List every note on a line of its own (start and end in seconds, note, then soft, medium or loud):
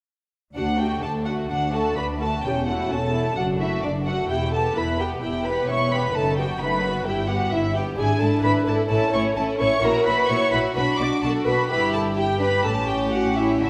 0.56 0.98 D2 soft
0.56 0.78 D4 soft
0.56 0.64 F#4 soft
0.56 0.78 F#5 medium
0.79 1.04 A3 soft
0.79 1.04 F#4 soft
0.79 1.03 G4 soft
0.79 1.03 G5 medium
1.02 1.45 D2 soft
1.02 1.27 D4 soft
1.02 1.27 A4 soft
1.02 1.10 A5 medium
1.26 1.50 A3 soft
1.26 1.49 F#4 soft
1.26 1.50 F#4 soft
1.26 1.34 F#5 soft
1.50 1.92 D2 soft
1.50 1.73 D4 soft
1.50 1.73 F#4 soft
1.50 1.73 F#5 medium
1.73 1.97 A3 soft
1.73 1.97 F#4 soft
1.73 1.97 A4 soft
1.73 1.97 A5 medium
1.96 2.39 D2 soft
1.96 2.21 D4 soft
1.96 2.05 B4 soft
1.96 2.04 B5 medium
2.21 2.44 A3 soft
2.21 2.44 F#4 soft
2.21 2.29 A4 soft
2.21 2.44 A5 medium
2.44 2.85 E1 soft
2.44 2.85 E2 soft
2.44 2.66 C#4 soft
2.44 2.53 G4 soft
2.44 2.67 G5 medium
2.67 2.91 A3 soft
2.67 2.91 E4 soft
2.67 2.91 F#4 soft
2.67 2.90 F#5 soft
2.90 3.31 E1 soft
2.90 3.32 E2 soft
2.90 3.14 C#4 soft
2.90 3.38 A4 soft
2.90 3.37 A5 medium
3.13 3.37 A3 soft
3.13 3.37 E4 soft
3.36 3.78 F#1 soft
3.36 3.78 F#2 soft
3.36 3.58 D4 soft
3.36 3.61 F#4 soft
3.36 3.44 F#5 medium
3.60 3.84 A3 soft
3.60 3.69 E4 soft
3.60 3.84 F#4 soft
3.60 3.83 E5 medium
3.82 4.25 F#1 soft
3.82 4.24 F#2 soft
3.82 4.07 D4 soft
3.82 3.92 D4 soft
3.82 3.90 D5 medium
4.06 4.30 A3 soft
4.06 4.30 F#4 soft
4.06 4.29 F#5 medium
4.29 4.71 E1 soft
4.29 4.71 E2 soft
4.29 4.52 E4 soft
4.29 4.54 G4 medium
4.29 4.52 G5 medium
4.53 4.77 B3 soft
4.53 4.77 G4 soft
4.53 4.76 A4 soft
4.53 4.76 A5 medium
4.76 5.17 E1 soft
4.76 5.17 E2 soft
4.76 5.00 E4 soft
4.76 5.00 B4 soft
4.76 5.00 B5 medium
4.99 5.23 B3 soft
4.99 5.22 G4 soft
4.99 5.21 G4 soft
4.99 5.08 G5 medium
5.22 5.63 E1 soft
5.22 5.64 E2 soft
5.22 5.44 E4 soft
5.22 5.45 G4 soft
5.22 5.45 G5 medium
5.45 5.69 B3 soft
5.45 5.69 G4 soft
5.45 5.69 B4 soft
5.45 5.69 B5 medium
5.69 6.09 E1 soft
5.69 6.10 E2 soft
5.69 5.92 E4 soft
5.69 5.92 C#5 medium
5.69 5.92 C#6 medium
5.92 6.15 B3 soft
5.92 6.15 G4 soft
5.92 6.15 B4 medium
5.92 6.15 B5 medium
6.15 6.55 F#1 soft
6.15 6.55 F#2 medium
6.15 6.37 A3 soft
6.15 6.37 D#4 soft
6.15 6.38 A4 medium
6.15 6.38 A5 medium
6.38 6.61 B3 soft
6.38 6.61 F#4 soft
6.38 6.47 G4 soft
6.38 6.60 G5 medium
6.60 7.01 F#1 soft
6.60 7.01 F#2 medium
6.60 6.83 A3 soft
6.60 6.83 D#4 soft
6.60 7.06 B4 medium
6.60 7.06 B5 medium
6.84 7.06 B3 soft
6.84 7.06 F#4 soft
7.06 7.47 G1 medium
7.06 7.47 G2 soft
7.06 7.28 E4 soft
7.06 7.29 G4 medium
7.06 7.29 G5 medium
7.29 7.52 B3 soft
7.29 7.52 F#4 soft
7.29 7.52 G4 soft
7.29 7.52 F#5 medium
7.52 7.93 G1 medium
7.52 7.92 G2 soft
7.52 7.60 E4 medium
7.52 7.75 E4 soft
7.52 7.76 E5 medium
7.75 7.98 B3 soft
7.75 7.98 G4 medium
7.75 7.98 G4 soft
7.75 7.83 G5 medium
7.97 8.06 G#1 soft
7.97 8.06 G#2 soft
7.97 8.19 D4 soft
7.97 8.19 E4 soft
7.97 8.21 G#4 medium
7.97 8.21 G#5 medium
8.20 8.29 G#1 soft
8.20 8.28 G#2 soft
8.20 8.42 D4 soft
8.20 8.42 E4 soft
8.20 8.43 A4 medium
8.20 8.44 A5 medium
8.43 8.52 G#1 soft
8.43 8.51 G#2 medium
8.43 8.65 D4 soft
8.43 8.65 E4 soft
8.43 8.66 B4 medium
8.43 8.52 B5 medium
8.66 8.75 G#1 soft
8.66 8.75 G#2 soft
8.66 8.90 D4 soft
8.66 8.88 E4 soft
8.66 8.88 A4 medium
8.66 8.75 A5 medium
8.89 8.98 A1 medium
8.89 8.98 A2 soft
8.89 9.11 C#4 soft
8.89 9.12 E4 medium
8.89 9.13 A4 medium
8.89 9.13 A5 medium
9.12 9.22 A1 soft
9.12 9.21 A2 soft
9.12 9.35 C#4 soft
9.12 9.36 E4 soft
9.12 9.36 C#5 medium
9.12 9.22 C#6 medium
9.36 9.45 A1 medium
9.36 9.45 A2 soft
9.36 9.59 C#4 soft
9.36 9.59 E4 soft
9.36 9.60 A4 medium
9.36 9.44 A5 medium
9.59 9.69 A1 soft
9.59 9.69 A2 medium
9.59 9.83 C#4 soft
9.59 9.81 E4 soft
9.59 9.83 C#5 medium
9.59 9.83 C#6 medium
9.82 9.92 A#1 medium
9.82 9.92 A#2 medium
9.82 10.05 E4 soft
9.82 10.05 F#4 soft
9.82 10.06 A#4 medium
9.82 10.07 A#5 medium
10.06 10.15 A#1 soft
10.06 10.15 A#2 soft
10.06 10.28 E4 soft
10.06 10.28 F#4 soft
10.06 10.29 B4 medium
10.06 10.29 B5 medium
10.29 10.37 A#1 medium
10.29 10.38 A#2 medium
10.29 10.51 E4 soft
10.29 10.51 F#4 soft
10.29 10.52 C#5 medium
10.29 10.52 C#6 medium
10.52 10.60 A#1 soft
10.52 10.61 A#2 soft
10.52 10.75 E4 soft
10.52 10.75 F#4 soft
10.52 10.60 B4 medium
10.52 10.60 B5 medium
10.76 10.84 B1 medium
10.76 10.84 B2 medium
10.76 10.98 D4 soft
10.76 10.98 F#4 soft
10.76 10.84 B4 medium
10.76 10.99 B5 medium
10.99 11.07 B1 soft
10.99 11.07 B2 medium
10.99 11.22 D4 soft
10.99 11.22 F#4 soft
10.99 11.08 D5 medium
10.99 11.23 D6 medium
11.23 11.31 B1 medium
11.23 11.31 B2 soft
11.23 11.45 D4 soft
11.23 11.45 F#4 soft
11.23 11.46 A4 medium
11.23 11.31 A5 medium
11.46 11.54 B1 soft
11.46 11.55 B2 soft
11.46 11.69 D4 soft
11.46 11.69 F#4 soft
11.46 11.69 B4 medium
11.46 11.68 B5 medium
11.69 12.60 G1 soft
11.69 12.60 G2 medium
11.69 12.13 E4 soft
11.69 12.13 G4 medium
11.69 11.78 B4 medium
11.69 11.93 B5 medium
11.93 12.01 A4 medium
11.93 12.02 A5 medium
12.16 12.24 E4 soft
12.16 12.62 G4 soft
12.16 12.40 G4 medium
12.16 12.40 G5 medium
12.40 12.48 D4 soft
12.40 12.63 B4 medium
12.40 12.64 B5 medium
12.63 13.61 A1 medium
12.63 13.61 A2 medium
12.63 13.59 C#4 medium
12.63 13.59 G4 medium
12.63 12.71 A4 medium
12.63 12.88 A5 medium
12.87 12.95 G4 medium
12.87 13.12 G5 medium
13.12 13.36 F#4 medium
13.12 13.36 F#5 medium
13.36 13.60 E4 medium
13.36 13.60 E5 medium
13.61 13.70 D2 soft
13.61 13.70 D3 soft
13.61 13.70 D4 soft
13.61 13.70 E4 medium
13.61 13.70 F#4 soft
13.61 13.70 E5 medium